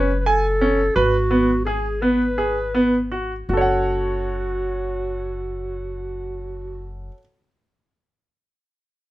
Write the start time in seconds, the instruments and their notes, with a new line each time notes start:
Already playing: upright bass F#1, grand piano C#4, clarinet B4
0.19 clarinet B4
0.26 clarinet A4, grand piano G#5
0.61 grand piano C#4
0.95 upright bass G#1, clarinet F#4, grand piano B4
1.31 grand piano B3
1.65 clarinet G#4, grand piano G#4
2.02 grand piano B3, clarinet B4
2.38 grand piano G#4
2.75 grand piano B3
3.12 grand piano F#4
3.47 upright bass F#1, clarinet F#4, grand piano F#4
3.53 grand piano A4 C#5
3.61 grand piano F#5